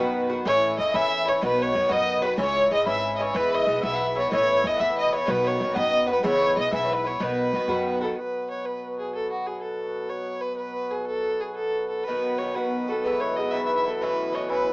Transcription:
Already playing: F#2 F#4 B4
0.00 B2 D#3 B3
0.29 D#3 B3 F#4
0.45 A1 A2 E3 C#4 E4 C#5
0.78 E2 A2 E3 C#4 E4 D#5
0.93 E2 A2 E3 C#4 E4 E5
1.25 E3 C#4 E4 C#5
1.41 B1 B2 D#3 B3 F#4 B4
1.58 C#5
1.72 F#2 B2 D#3 B3 F#4
1.89 F#2 B2 D#3 B3 F#4 D#5
2.21 D#3 B3 F#4 B4
2.37 C#2 G#2 E3 C#4 E4 C#5
2.70 G#1 G#2 E3 C#4 E4 D#5
2.85 G#1 G#2 E3 C#4 E4 E5
3.16 E4 C#5 D#5
3.20 E3 C#4 C#5
3.34 E2 G#2 E3 B3 E4 B4
3.52 D#5
3.66 B1 G#2 E3 B3 E4
3.82 B1 G#2 E3 B3 E4 E5
3.96 F#5
4.07 E5
4.15 E3 B3 E4 C#5
4.29 A1 A2 E3 B3 C#5 D#5
4.33 E4 C#5
4.50 C#5
4.62 E2 A2 E3 B3 E4 D#5
4.67 D#5
4.77 E2 E3 B3 E4 E5 F#5
4.81 A2
4.97 D#5
5.11 E3 B3 E4 C#5
5.15 C#5
5.26 B1 B2 D#3 B3 F#4 B4
5.30 B4
5.44 C#5
5.59 F#2 B2 D#3 B3 F#4
5.74 F#2 B2 D#3 B3 F#4 D#5
6.07 D#3 B3 F#4 B4
6.11 B4
6.23 E2 G#2 E3 B3 E4 C#5
6.55 B1 G#2 E3 B3 E4 D#5
6.60 D#5
6.71 B1 G#2 E3 B3 E4 E5
6.75 E5
6.85 C#5
6.89 B4
6.93 B4
7.04 E3 B3 E4 C#5
7.20 B1 B2 D#3 B3 F#4 B4
7.53 F#2 B2 D#3 B3 F#4
7.68 F#2 B2 D#3 B3 F#4
8.01 D#3 B3 F#4 A4
8.17 B2 F#3 B4
8.50 C#5
8.65 B4
8.99 G#4
9.15 A4
9.31 F#4
9.47 G#4
9.62 A4
10.10 C#5
10.41 B4
10.57 B4
10.91 G#4
11.07 A4
11.40 G#4
11.55 A4
11.89 A4
12.04 B2 F#3 B4
12.08 D#3 B3 F#4
12.38 B2 D#3 B3 C#5
12.43 F#4
12.55 B2 D#3 B3 F#4 B4
12.88 B3 F#4 A4 B4
12.92 D#3
13.03 G#2 E3 B3 E4 B4
13.20 C#5
13.36 G#2 E3 B3 D#5
13.41 E4
13.52 G#2 E3 B3 E4 E5
13.66 E5
13.75 E5
13.85 E3 B3 E4 A4
14.01 A2 E3 C#4 E4 B4
14.32 A2 E3 C#4 C#5 D#5
14.37 E4
14.49 A2 E3 C#4 E4 B4

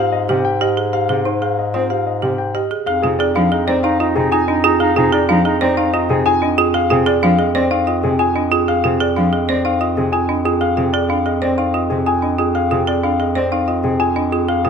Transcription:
Already playing: G#2 G4 F5
0.12 D#5
0.29 C3 G4
0.45 G5
0.61 G4 D#5
0.77 G#4
0.93 G4 F5
1.09 C3 G4 G#4
1.25 D#4 C5
1.42 G#4 F5
1.59 D#5
1.74 C4 F4 C5
1.90 G4 F5
2.06 D#5
2.22 C3 G4
2.38 G5
2.54 G4 D#5
2.71 G#4
2.86 F2 D#4 G#4 F5
3.02 C3 D#4 F4 G#4
3.19 D#4 G#4 D5
3.35 F3 D4 D#4 F5
3.51 D#4 G#4 D#5
3.67 C4 D#4 C5 D5
3.83 D#4 F5
3.99 D#4 F4 D#5
4.15 C3 D#4 G#4
4.32 D#4 F4 G#5
4.48 D4 D#4 D#5
4.64 D#4 F4 G#4
4.80 D#4 G#4 F5
4.96 C3 D#4 F4 G#4
5.13 D#4 G#4 D5
5.29 F3 D4 D#4 F5
5.45 D#4 G#4 D#5
5.61 C4 D#4 C5 D5
5.77 D#4 F5
5.93 D#4 F4 D#5
6.10 C3 D#4 G#4
6.26 D#4 F4 G#5
6.42 D4 D#4 D#5
6.58 F4 G#4
6.74 G#4 F5
6.90 C3 F4 G#4
7.06 G#4 D5
7.23 F3 D4 F5
7.39 G#4 D#5
7.55 C4 C5 D5
7.71 D#4 F5
7.87 F4 D#5
8.04 C3 G#4
8.19 F4 G#5
8.35 D4 D#5
8.52 F4 G#4
8.68 G#4 F5
8.84 C3 F4 G#4
9.00 G#4 D5
9.16 F3 D4 F5
9.33 G#4 D#5
9.49 C4 C5 D5
9.65 D#4 F5
9.80 F4 D#5
9.97 C3 G#4
10.12 F4 G#5
10.29 D4 D#5
10.45 F4 G#4
10.61 G#4 F5
10.77 C3 F4 G#4
10.93 G#4 D5
11.09 D4 F5
11.26 G#4 D#5
11.42 C4 C5 D5
11.58 D#4 F5
11.74 F4 D#5
11.90 C3 G#4
12.06 F4 G#5
12.22 D4 D#5
12.39 F4 G#4
12.55 G#4 F5
12.71 C3 F4 G#4
12.87 G#4 D5
13.03 D4 F5
13.20 G#4 D#5
13.35 C4 C5 D5
13.52 D#4 F5
13.68 F4 D#5
13.84 C3 G#4
14.00 F4 G#5
14.16 D4 D#5
14.32 F4 G#4
14.48 G#4 F5
14.64 C3 F4 G#4

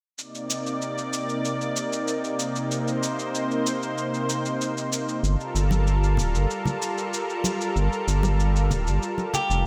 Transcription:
0.17 C3 A#3 D#4 D5, cabasa
0.35 cabasa
0.50 cabasa
0.66 cabasa
0.82 cabasa
0.98 cabasa
1.13 cabasa
1.29 cabasa
1.45 cabasa
1.61 cabasa
1.76 cabasa
1.93 cabasa
2.08 cabasa
2.24 cabasa
2.39 cabasa
2.56 cabasa
2.70 C5, cabasa
2.88 cabasa
3.03 cabasa
3.19 cabasa
3.35 cabasa
3.51 cabasa
3.66 cabasa
3.83 cabasa
3.98 cabasa
4.14 cabasa
4.29 cabasa
4.46 cabasa
4.61 cabasa
4.77 cabasa
4.92 cabasa
5.09 cabasa
5.23 G1 G3 F4 A4 A#4, cabasa
5.41 cabasa
5.55 G1, cabasa
5.71 high conga, cabasa
5.87 cabasa
6.04 cabasa
6.17 D1, low conga, cabasa
6.34 G1, cabasa
6.51 cabasa
6.65 high conga, low conga, cabasa
6.82 cabasa
6.98 cabasa
7.13 cabasa
7.30 cabasa
7.44 high conga, cabasa
7.61 cabasa
7.76 G1, cabasa
7.93 cabasa
8.08 G1, cabasa
8.23 high conga, cabasa
8.40 cabasa
8.56 cabasa
8.71 D1, low conga, cabasa
8.86 G1, cabasa
9.03 cabasa
9.18 high conga, cabasa
9.34 G4, low conga, cabasa
9.50 F1, cabasa

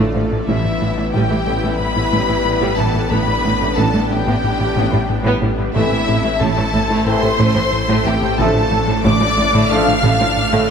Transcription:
Already playing: A1 F3 A3 D4 F4 A4 D5 F5
0.00 A3
0.14 A1 A2 F3
0.31 A2 D3 D4
0.47 A1 A2 E3 G3 B3 E4 G4 B4 E5
0.65 A2
0.81 A1 A2 E3 G3
0.97 A2 E3 A3 B3
1.13 A1 A2 E3 G3 G4 G5
1.30 A2 E3 A3 B3
1.46 A1 A2 E3 A3 B3
1.63 A2 E3 G3
1.78 A2 B4 B5
1.96 A2 E3 E4
2.12 A1 A2 E3 G3
2.28 A2 E3 E4
2.45 A2
2.61 A2 E3 G3
2.78 A1 A2 E3 G3 A4 A5
2.94 A2 E3 E4
3.10 A1 A2 D3 G3 B3 D4 B4 B5
3.28 A2
3.44 A1 A2 D3 B3
3.60 A2 G3 A3 D4
3.77 A1 A2 G3 B3 A4 A5
3.93 A2 G3 A3 D4
4.09 A1 A2 D3 A3 D4 G4 G5
4.26 A2 G3 B3
4.44 A2
4.59 A2 D3 G4
4.76 A1 A2 G3 B3
4.92 A2 G3 G4
5.10 A2
5.24 A2 G3 B3
5.41 A1 A2 G3 B3
5.57 A2 D3 G4
5.73 A1 A2 E3 A3 C4 E4 A4 C5 E5
5.92 A2
6.07 A1 A2 C3 C4
6.23 A2 E3 A3 E4
6.40 A1 A2 A3 A4 A5
6.56 A2 E3 A3 E4
6.73 A1 A2 C3 A3 E4
6.89 A2 A3
7.06 A2 E3 A3 C4 A4 C5 C6
7.22 A2 C3 A4
7.38 A1 A2 A3
7.55 A2 E3 A4
7.73 A2
7.88 A2 A3
8.05 A1 A2 E3 C4 G4 G5
8.22 A2 C3 A4
8.38 A1 A2 D3 F3 A3 D4 A4 D5 A5
8.55 A2
8.71 A1 A2 D3 F3
8.87 A2 F3 A3
9.03 A1 A2 D3 A3 D5 D6
9.20 A2 F3 A3
9.36 A1 A2 D3 A3
9.53 A2 D3 A3
9.69 A2 F3 A3 D4 A4 F5 F6
9.86 A2 D3 D4
10.02 A1 A2 D3 A3
10.19 A2 F3 D4
10.37 A2
10.52 A2 D3 A3

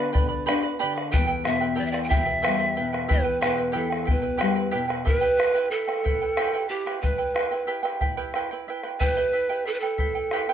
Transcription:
Already playing: D3 B3 B4 D5 B5
0.13 D3 B4 D5 G5 B5, bombo rim, bombo low
0.29 B4 D5 B5
0.46 D4 G4 B4 D5 G5 B5, bombo rim
0.62 B4 D5 B5, bombo rim
0.79 D3 G4 B4 D5 G5 B5
0.95 B4 D5 B5, bombo rim
1.11 E2 E4 G4 B4 E5 G5, bombo low
1.27 E4 B4 G5
1.44 B2 E4 B4 E5 G5, bombo rim
1.61 E4 B4 G5
1.75 E4 G4 B4 D5 E5 G5
1.81 E3
1.86 E5
1.92 E4 B4 D5 G5, bombo rim
2.03 G5
2.09 B2 E4 G4 B4 E5 G5, bombo rim, bombo low
2.25 E4 B4 G5
2.42 E4 G4 B4 E5 G5, bombo rim
2.47 G3
2.59 E4 B4 G5, bombo rim
2.75 E4 B4 E5 G5
2.79 B2
2.93 E4 B4 G5, bombo rim
3.08 E2 E4 G4 B4 E5 G5, bombo rim, bombo low
3.24 E4 B4 G5
3.41 B2 E4 G4 B4 E5 G5, bombo rim
3.58 E4 B4 G5
3.72 E3 E4 G4 B4 E5 G5
3.76 A4, bombo rim
3.90 E4 B4 G5, bombo rim
4.05 B2 E4 B4 E5 G5, bombo low
4.10 B4
4.22 E4 B4 G5
4.37 E4 G4 B4 E5 G5, bombo rim
4.42 G3
4.55 E4 B4 G5
4.71 B2 E4 G4 B4 E5 G5
4.88 E4 B4 G5, bombo rim
5.05 E4 G4 B4 E5 G5, bombo rim, bombo low
5.21 E4 G4 B4 E5 G5
5.37 E4 B4 E5 G5, bombo rim
5.54 E4 G4 B4 E5 G5, bombo rim
5.71 E4 A4 B4 E5 G5
5.87 E4 B4 G5, bombo rim
6.04 E4 B4 E5 G5, bombo low
6.21 E4 B4 G5
6.37 E4 G4 B4 E5 G5, bombo rim
6.53 E4 G4 B4 E5 G5
6.69 E4 G4 B4 E5 G5
6.86 E4 G4 B4 E5 G5, bombo rim
7.01 E4 B4 E5 G5, bombo rim, bombo low
7.18 E4 B4 G5
7.34 E4 B4 E5 G5, bombo rim
7.51 E4 B4 G5, bombo rim
7.67 E4 G4 B4 E5 G5
7.83 E4 G4 B4 E5 G5, bombo rim
8.01 E4 B4 E5 G5, bombo low
8.17 E4 G4 B4 E5 G5
8.34 E4 B4 E5 G5, bombo rim
8.51 E4 B4 G5
8.68 E4 B4 E5 G5
8.83 E4 B4 G5, bombo rim
9.00 E4 G4 B4 E5 G5, bombo rim, bombo low
9.17 E4 G4 B4 E5 G5
9.33 E4 B4 E5 G5
9.49 E4 G4 B4 E5 G5, bombo rim
9.65 E4 A4 B4 E5 G5
9.74 B4
9.80 A4 B4 G5
9.84 E4
9.98 E4 B4 E5 G5, bombo low
10.15 E4 B4 G5
10.31 E4 G4 B4 E5 G5, bombo rim
10.49 E4 G4 B4 E5 G5

